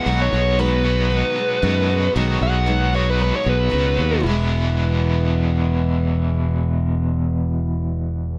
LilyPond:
<<
  \new Staff \with { instrumentName = "Lead electric guitar" } { \time 4/4 \key e \major \tempo 4 = 114 fis''16 cis''8. b'2. | r8 fis''4 cis''16 b'16 b'16 cis''16 b'4. | r1 | r1 | }
  \new Staff \with { instrumentName = "Overdriven electric guitar" } { \time 4/4 \key e \major <b, fis b dis' fis'>4. <b, fis b dis' fis'>4. <b, fis b dis' fis'>4 | <b, fis b dis' fis'>4. <b, fis b dis' fis'>4. <b, fis b dis' fis'>4 | <e, b, e gis b e'>1~ | <e, b, e gis b e'>1 | }
  \new Staff \with { instrumentName = "Steel-string acoustic guitar" } { \time 4/4 \key e \major <b, dis gis b fis'>8 <gis b fis'>8 <b, dis gis b fis'>8 <gis b fis'>8 <dis gis b fis'>8 <gis b fis'>8 <b, dis gis b fis'>8 <gis b fis'>8 | <b, dis gis b fis'>8 <gis b fis'>8 <b, dis gis b fis'>8 <gis b fis'>8 <dis gis b fis'>8 <gis b fis'>8 <b, dis gis b fis'>8 <gis b fis'>8 | <e, b, e gis b e'>1~ | <e, b, e gis b e'>1 | }
  \new Staff \with { instrumentName = "Fingered electric bass" } { \clef bass \time 4/4 \key e \major b,,8 b,,2 r8 fis,4 | b,,8 b,,2 b,,8 cis,8 dis,8 | e,,1~ | e,,1 | }
>>